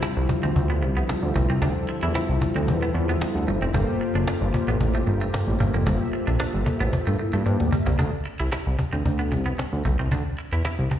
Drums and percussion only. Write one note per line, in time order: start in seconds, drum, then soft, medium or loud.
0.03 cajon slap loud
0.29 cajon bass loud
0.56 cajon bass loud
0.83 cajon slap soft
1.09 cajon slap loud
1.36 cajon bass loud
1.62 cajon bass loud
1.88 cajon slap soft
2.15 cajon slap loud
2.42 cajon bass loud
2.68 cajon bass loud
2.95 cajon slap soft
3.21 cajon slap loud
3.48 cajon slap soft
3.74 cajon bass loud
4.01 cajon slap soft
4.28 cajon slap loud
4.54 cajon bass loud
4.68 cajon slap soft
4.81 cajon bass loud
5.07 cajon slap soft
5.34 cajon slap loud
5.60 cajon bass medium
5.87 cajon bass loud
6.13 cajon slap soft
6.40 cajon slap loud
6.54 cajon slap soft
6.66 cajon bass loud
6.80 cajon slap soft
6.93 cajon bass loud
7.20 cajon slap soft
7.46 cajon slap soft
7.46 cajon slap medium
7.60 cajon slap medium
7.72 cajon bass loud
7.87 cajon bass loud
7.99 cajon bass loud
8.26 cajon slap soft
8.52 cajon slap loud
8.79 cajon bass loud
9.06 cajon bass loud
9.32 cajon bass medium
9.59 cajon slap loud
9.85 cajon bass medium
10.12 cajon bass loud
10.38 cajon slap soft
10.65 cajon slap loud
10.91 cajon bass medium